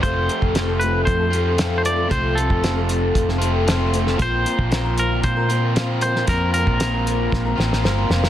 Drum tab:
HH |x-x-x-x-x-x-x-x-|x-x-x-x-x-x-x-x-|x-x-x-x-x-x-x-x-|x-x-x-x---------|
SD |----o-------o---|----o----o--o--o|----o-------o--o|----o---o-ooo-oo|
BD |o--o----o-------|o--o----o-------|o--o----o-------|o--o----o-------|